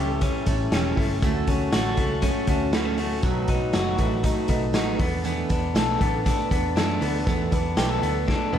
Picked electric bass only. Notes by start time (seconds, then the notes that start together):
Already playing: C#2
0.46 A1
0.72 E1
0.97 G1
1.22 D2
1.48 D2
1.72 A1
1.98 C#2
2.47 D2
3.23 B1
3.49 B1
3.74 F#1
3.99 A1
4.49 B1
4.74 A1
5.00 E2
5.50 E2
5.75 B1
6.00 A1
6.51 E2
6.76 F#2
7.02 D2
7.27 E2
7.53 E2
7.77 B1
8.02 D2
8.53 E2